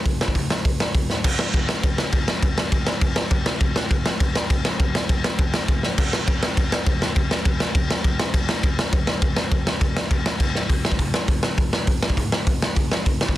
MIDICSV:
0, 0, Header, 1, 2, 480
1, 0, Start_track
1, 0, Tempo, 295567
1, 86, Time_signature, 4, 2, 24, 8
1, 21719, End_track
2, 0, Start_track
2, 0, Title_t, "Drums"
2, 91, Note_on_c, 9, 36, 108
2, 91, Note_on_c, 9, 46, 57
2, 253, Note_off_c, 9, 36, 0
2, 253, Note_off_c, 9, 46, 0
2, 342, Note_on_c, 9, 38, 112
2, 453, Note_on_c, 9, 36, 84
2, 504, Note_off_c, 9, 38, 0
2, 569, Note_on_c, 9, 46, 65
2, 571, Note_off_c, 9, 36, 0
2, 571, Note_on_c, 9, 36, 98
2, 732, Note_off_c, 9, 46, 0
2, 733, Note_off_c, 9, 36, 0
2, 819, Note_on_c, 9, 38, 106
2, 982, Note_off_c, 9, 38, 0
2, 1057, Note_on_c, 9, 36, 115
2, 1060, Note_on_c, 9, 46, 59
2, 1219, Note_off_c, 9, 36, 0
2, 1223, Note_off_c, 9, 46, 0
2, 1304, Note_on_c, 9, 38, 108
2, 1466, Note_off_c, 9, 38, 0
2, 1536, Note_on_c, 9, 36, 103
2, 1536, Note_on_c, 9, 46, 55
2, 1698, Note_off_c, 9, 36, 0
2, 1698, Note_off_c, 9, 46, 0
2, 1781, Note_on_c, 9, 38, 59
2, 1943, Note_off_c, 9, 38, 0
2, 2018, Note_on_c, 9, 49, 127
2, 2018, Note_on_c, 9, 57, 68
2, 2019, Note_on_c, 9, 36, 116
2, 2181, Note_off_c, 9, 36, 0
2, 2181, Note_off_c, 9, 49, 0
2, 2181, Note_off_c, 9, 57, 0
2, 2255, Note_on_c, 9, 38, 112
2, 2418, Note_off_c, 9, 38, 0
2, 2497, Note_on_c, 9, 57, 60
2, 2498, Note_on_c, 9, 36, 108
2, 2659, Note_off_c, 9, 57, 0
2, 2661, Note_off_c, 9, 36, 0
2, 2740, Note_on_c, 9, 38, 115
2, 2903, Note_off_c, 9, 38, 0
2, 2978, Note_on_c, 9, 57, 74
2, 2980, Note_on_c, 9, 36, 125
2, 3141, Note_off_c, 9, 57, 0
2, 3142, Note_off_c, 9, 36, 0
2, 3220, Note_on_c, 9, 38, 110
2, 3382, Note_off_c, 9, 38, 0
2, 3450, Note_on_c, 9, 57, 70
2, 3457, Note_on_c, 9, 36, 112
2, 3612, Note_off_c, 9, 57, 0
2, 3620, Note_off_c, 9, 36, 0
2, 3701, Note_on_c, 9, 38, 108
2, 3863, Note_off_c, 9, 38, 0
2, 3935, Note_on_c, 9, 57, 70
2, 3939, Note_on_c, 9, 36, 120
2, 4098, Note_off_c, 9, 57, 0
2, 4101, Note_off_c, 9, 36, 0
2, 4185, Note_on_c, 9, 38, 116
2, 4348, Note_off_c, 9, 38, 0
2, 4418, Note_on_c, 9, 36, 107
2, 4418, Note_on_c, 9, 57, 65
2, 4580, Note_off_c, 9, 36, 0
2, 4580, Note_off_c, 9, 57, 0
2, 4653, Note_on_c, 9, 38, 117
2, 4816, Note_off_c, 9, 38, 0
2, 4892, Note_on_c, 9, 57, 73
2, 4897, Note_on_c, 9, 36, 120
2, 5054, Note_off_c, 9, 57, 0
2, 5059, Note_off_c, 9, 36, 0
2, 5131, Note_on_c, 9, 38, 124
2, 5294, Note_off_c, 9, 38, 0
2, 5369, Note_on_c, 9, 57, 66
2, 5377, Note_on_c, 9, 36, 119
2, 5531, Note_off_c, 9, 57, 0
2, 5539, Note_off_c, 9, 36, 0
2, 5618, Note_on_c, 9, 38, 113
2, 5781, Note_off_c, 9, 38, 0
2, 5853, Note_on_c, 9, 57, 64
2, 5859, Note_on_c, 9, 36, 115
2, 6016, Note_off_c, 9, 57, 0
2, 6021, Note_off_c, 9, 36, 0
2, 6103, Note_on_c, 9, 38, 111
2, 6265, Note_off_c, 9, 38, 0
2, 6342, Note_on_c, 9, 57, 62
2, 6345, Note_on_c, 9, 36, 118
2, 6505, Note_off_c, 9, 57, 0
2, 6508, Note_off_c, 9, 36, 0
2, 6587, Note_on_c, 9, 38, 113
2, 6749, Note_off_c, 9, 38, 0
2, 6823, Note_on_c, 9, 57, 69
2, 6827, Note_on_c, 9, 36, 123
2, 6986, Note_off_c, 9, 57, 0
2, 6990, Note_off_c, 9, 36, 0
2, 7073, Note_on_c, 9, 38, 117
2, 7235, Note_off_c, 9, 38, 0
2, 7311, Note_on_c, 9, 36, 113
2, 7311, Note_on_c, 9, 57, 68
2, 7473, Note_off_c, 9, 36, 0
2, 7473, Note_off_c, 9, 57, 0
2, 7550, Note_on_c, 9, 38, 113
2, 7712, Note_off_c, 9, 38, 0
2, 7790, Note_on_c, 9, 36, 125
2, 7792, Note_on_c, 9, 57, 71
2, 7953, Note_off_c, 9, 36, 0
2, 7955, Note_off_c, 9, 57, 0
2, 8039, Note_on_c, 9, 38, 118
2, 8201, Note_off_c, 9, 38, 0
2, 8272, Note_on_c, 9, 36, 112
2, 8273, Note_on_c, 9, 57, 62
2, 8434, Note_off_c, 9, 36, 0
2, 8436, Note_off_c, 9, 57, 0
2, 8515, Note_on_c, 9, 38, 126
2, 8677, Note_off_c, 9, 38, 0
2, 8746, Note_on_c, 9, 57, 68
2, 8750, Note_on_c, 9, 36, 126
2, 8909, Note_off_c, 9, 57, 0
2, 8912, Note_off_c, 9, 36, 0
2, 8991, Note_on_c, 9, 38, 115
2, 9154, Note_off_c, 9, 38, 0
2, 9228, Note_on_c, 9, 57, 60
2, 9231, Note_on_c, 9, 36, 112
2, 9391, Note_off_c, 9, 57, 0
2, 9394, Note_off_c, 9, 36, 0
2, 9472, Note_on_c, 9, 38, 71
2, 9634, Note_off_c, 9, 38, 0
2, 9710, Note_on_c, 9, 49, 105
2, 9710, Note_on_c, 9, 57, 59
2, 9712, Note_on_c, 9, 36, 117
2, 9872, Note_off_c, 9, 49, 0
2, 9872, Note_off_c, 9, 57, 0
2, 9874, Note_off_c, 9, 36, 0
2, 9958, Note_on_c, 9, 38, 111
2, 10120, Note_off_c, 9, 38, 0
2, 10191, Note_on_c, 9, 57, 67
2, 10194, Note_on_c, 9, 36, 120
2, 10353, Note_off_c, 9, 57, 0
2, 10356, Note_off_c, 9, 36, 0
2, 10436, Note_on_c, 9, 38, 115
2, 10599, Note_off_c, 9, 38, 0
2, 10673, Note_on_c, 9, 36, 120
2, 10678, Note_on_c, 9, 57, 70
2, 10836, Note_off_c, 9, 36, 0
2, 10840, Note_off_c, 9, 57, 0
2, 10918, Note_on_c, 9, 38, 122
2, 11080, Note_off_c, 9, 38, 0
2, 11145, Note_on_c, 9, 57, 64
2, 11150, Note_on_c, 9, 36, 120
2, 11308, Note_off_c, 9, 57, 0
2, 11312, Note_off_c, 9, 36, 0
2, 11399, Note_on_c, 9, 38, 98
2, 11562, Note_off_c, 9, 38, 0
2, 11627, Note_on_c, 9, 57, 67
2, 11629, Note_on_c, 9, 36, 125
2, 11789, Note_off_c, 9, 57, 0
2, 11792, Note_off_c, 9, 36, 0
2, 11873, Note_on_c, 9, 38, 105
2, 12035, Note_off_c, 9, 38, 0
2, 12101, Note_on_c, 9, 57, 70
2, 12107, Note_on_c, 9, 36, 123
2, 12263, Note_off_c, 9, 57, 0
2, 12269, Note_off_c, 9, 36, 0
2, 12347, Note_on_c, 9, 38, 108
2, 12509, Note_off_c, 9, 38, 0
2, 12585, Note_on_c, 9, 36, 126
2, 12586, Note_on_c, 9, 57, 73
2, 12747, Note_off_c, 9, 36, 0
2, 12748, Note_off_c, 9, 57, 0
2, 12838, Note_on_c, 9, 38, 113
2, 13000, Note_off_c, 9, 38, 0
2, 13062, Note_on_c, 9, 57, 68
2, 13064, Note_on_c, 9, 36, 108
2, 13224, Note_off_c, 9, 57, 0
2, 13226, Note_off_c, 9, 36, 0
2, 13309, Note_on_c, 9, 38, 123
2, 13471, Note_off_c, 9, 38, 0
2, 13542, Note_on_c, 9, 36, 111
2, 13543, Note_on_c, 9, 57, 73
2, 13704, Note_off_c, 9, 36, 0
2, 13706, Note_off_c, 9, 57, 0
2, 13784, Note_on_c, 9, 38, 111
2, 13947, Note_off_c, 9, 38, 0
2, 14022, Note_on_c, 9, 36, 123
2, 14025, Note_on_c, 9, 57, 65
2, 14184, Note_off_c, 9, 36, 0
2, 14187, Note_off_c, 9, 57, 0
2, 14272, Note_on_c, 9, 38, 112
2, 14435, Note_off_c, 9, 38, 0
2, 14499, Note_on_c, 9, 36, 127
2, 14499, Note_on_c, 9, 57, 62
2, 14661, Note_off_c, 9, 36, 0
2, 14661, Note_off_c, 9, 57, 0
2, 14734, Note_on_c, 9, 38, 112
2, 14896, Note_off_c, 9, 38, 0
2, 14970, Note_on_c, 9, 57, 68
2, 14974, Note_on_c, 9, 36, 118
2, 15133, Note_off_c, 9, 57, 0
2, 15136, Note_off_c, 9, 36, 0
2, 15209, Note_on_c, 9, 38, 115
2, 15371, Note_off_c, 9, 38, 0
2, 15450, Note_on_c, 9, 57, 65
2, 15453, Note_on_c, 9, 36, 118
2, 15613, Note_off_c, 9, 57, 0
2, 15616, Note_off_c, 9, 36, 0
2, 15702, Note_on_c, 9, 38, 109
2, 15864, Note_off_c, 9, 38, 0
2, 15932, Note_on_c, 9, 57, 66
2, 15933, Note_on_c, 9, 36, 116
2, 16095, Note_off_c, 9, 36, 0
2, 16095, Note_off_c, 9, 57, 0
2, 16184, Note_on_c, 9, 38, 119
2, 16346, Note_off_c, 9, 38, 0
2, 16414, Note_on_c, 9, 36, 118
2, 16421, Note_on_c, 9, 57, 68
2, 16577, Note_off_c, 9, 36, 0
2, 16584, Note_off_c, 9, 57, 0
2, 16660, Note_on_c, 9, 38, 120
2, 16822, Note_off_c, 9, 38, 0
2, 16887, Note_on_c, 9, 57, 71
2, 16889, Note_on_c, 9, 36, 106
2, 17050, Note_off_c, 9, 57, 0
2, 17052, Note_off_c, 9, 36, 0
2, 17138, Note_on_c, 9, 38, 66
2, 17300, Note_off_c, 9, 38, 0
2, 17369, Note_on_c, 9, 36, 110
2, 17371, Note_on_c, 9, 46, 61
2, 17532, Note_off_c, 9, 36, 0
2, 17533, Note_off_c, 9, 46, 0
2, 17617, Note_on_c, 9, 38, 91
2, 17727, Note_on_c, 9, 36, 78
2, 17780, Note_off_c, 9, 38, 0
2, 17848, Note_off_c, 9, 36, 0
2, 17848, Note_on_c, 9, 36, 101
2, 17849, Note_on_c, 9, 46, 59
2, 18010, Note_off_c, 9, 36, 0
2, 18011, Note_off_c, 9, 46, 0
2, 18090, Note_on_c, 9, 38, 113
2, 18252, Note_off_c, 9, 38, 0
2, 18317, Note_on_c, 9, 46, 55
2, 18322, Note_on_c, 9, 36, 107
2, 18479, Note_off_c, 9, 46, 0
2, 18484, Note_off_c, 9, 36, 0
2, 18560, Note_on_c, 9, 38, 112
2, 18722, Note_off_c, 9, 38, 0
2, 18803, Note_on_c, 9, 36, 106
2, 18803, Note_on_c, 9, 46, 53
2, 18965, Note_off_c, 9, 46, 0
2, 18966, Note_off_c, 9, 36, 0
2, 19049, Note_on_c, 9, 38, 102
2, 19211, Note_off_c, 9, 38, 0
2, 19277, Note_on_c, 9, 46, 60
2, 19284, Note_on_c, 9, 36, 112
2, 19439, Note_off_c, 9, 46, 0
2, 19446, Note_off_c, 9, 36, 0
2, 19529, Note_on_c, 9, 38, 105
2, 19645, Note_on_c, 9, 36, 83
2, 19691, Note_off_c, 9, 38, 0
2, 19767, Note_off_c, 9, 36, 0
2, 19767, Note_on_c, 9, 36, 92
2, 19771, Note_on_c, 9, 46, 65
2, 19929, Note_off_c, 9, 36, 0
2, 19933, Note_off_c, 9, 46, 0
2, 20013, Note_on_c, 9, 38, 114
2, 20176, Note_off_c, 9, 38, 0
2, 20250, Note_on_c, 9, 36, 115
2, 20252, Note_on_c, 9, 46, 62
2, 20412, Note_off_c, 9, 36, 0
2, 20414, Note_off_c, 9, 46, 0
2, 20502, Note_on_c, 9, 38, 111
2, 20664, Note_off_c, 9, 38, 0
2, 20724, Note_on_c, 9, 46, 60
2, 20730, Note_on_c, 9, 36, 101
2, 20887, Note_off_c, 9, 46, 0
2, 20893, Note_off_c, 9, 36, 0
2, 20974, Note_on_c, 9, 38, 99
2, 21136, Note_off_c, 9, 38, 0
2, 21208, Note_on_c, 9, 46, 59
2, 21213, Note_on_c, 9, 36, 110
2, 21370, Note_off_c, 9, 46, 0
2, 21375, Note_off_c, 9, 36, 0
2, 21452, Note_on_c, 9, 38, 106
2, 21575, Note_on_c, 9, 36, 82
2, 21614, Note_off_c, 9, 38, 0
2, 21719, Note_off_c, 9, 36, 0
2, 21719, End_track
0, 0, End_of_file